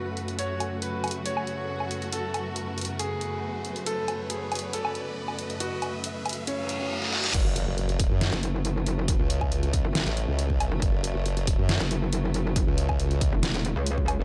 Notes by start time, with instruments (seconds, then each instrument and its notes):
Already playing: string section F#2 C#3 A3 B4, grand piano F#4, ambient pad F#4 B4 E5 F#5, riser
0.17 closed hi-hat
0.28 closed hi-hat
0.39 string section F#4, grand piano C#5, closed hi-hat
0.60 closed hi-hat, low woodblock
0.82 grand piano B4, closed hi-hat
1.04 closed hi-hat, low woodblock
1.08 closed hi-hat
1.11 closed hi-hat
1.26 grand piano C#5, closed hi-hat
1.37 low woodblock
1.47 closed hi-hat
1.80 low woodblock
1.91 closed hi-hat
2.02 closed hi-hat
2.12 grand piano A4, closed hi-hat
2.34 closed hi-hat, low woodblock
2.56 closed hi-hat
2.78 closed hi-hat
2.81 closed hi-hat
2.85 closed hi-hat
2.99 grand piano G#4, closed hi-hat
3.21 closed hi-hat
3.65 closed hi-hat
3.76 closed hi-hat
3.86 grand piano A4, string section B4, closed hi-hat
4.08 closed hi-hat, low woodblock
4.30 grand piano G#4, closed hi-hat
4.52 closed hi-hat, low woodblock
4.55 closed hi-hat
4.59 closed hi-hat
4.73 grand piano A4, closed hi-hat
4.85 low woodblock
4.95 closed hi-hat
5.28 low woodblock
5.39 closed hi-hat
5.50 closed hi-hat
5.60 grand piano F#4, closed hi-hat
5.82 closed hi-hat, low woodblock
6.04 closed hi-hat
6.26 closed hi-hat, low woodblock
6.29 closed hi-hat
6.33 closed hi-hat
6.47 grand piano C#4, closed hi-hat, reverse cymbal
6.69 closed hi-hat
7.02 snare
7.13 snare
7.24 snare
7.34 wobble bass F#1, string section C#3 F#3 A3, kick, closed hi-hat, crash, impact
7.56 closed hi-hat
7.67 wobble bass F#1
7.78 closed hi-hat
7.89 closed hi-hat
8.00 kick, open hi-hat
8.11 wobble bass F#2
8.21 snare, closed hi-hat
8.33 wobble bass F#1, closed hi-hat
8.43 closed hi-hat
8.65 closed hi-hat
8.86 closed hi-hat
9.08 kick, closed hi-hat
9.19 wobble bass C#2
9.30 closed hi-hat
9.41 kick, low woodblock
9.52 closed hi-hat
9.63 closed hi-hat
9.73 kick, open hi-hat
9.85 wobble bass F#1
9.95 snare, closed hi-hat
10.06 wobble bass A1, closed hi-hat
10.17 closed hi-hat
10.28 wobble bass C#2
10.39 closed hi-hat
10.50 kick
10.60 closed hi-hat, low woodblock
10.72 wobble bass F#1
10.82 wobble bass F#1, kick, closed hi-hat
11.04 closed hi-hat
11.15 wobble bass F#1
11.26 closed hi-hat
11.37 closed hi-hat
11.47 kick, open hi-hat
11.59 wobble bass F#2
11.69 snare, closed hi-hat
11.80 wobble bass F#1, closed hi-hat
11.91 closed hi-hat
12.13 closed hi-hat
12.34 closed hi-hat
12.56 kick, closed hi-hat
12.67 wobble bass C#2
12.78 closed hi-hat
12.89 kick, low woodblock
13.00 closed hi-hat
13.11 closed hi-hat
13.21 kick, open hi-hat
13.32 wobble bass E1
13.43 snare, closed hi-hat
13.54 closed hi-hat
13.65 closed hi-hat
13.76 wobble bass C#2
13.86 closed hi-hat
13.98 kick
14.08 closed hi-hat, low woodblock
14.19 wobble bass F#1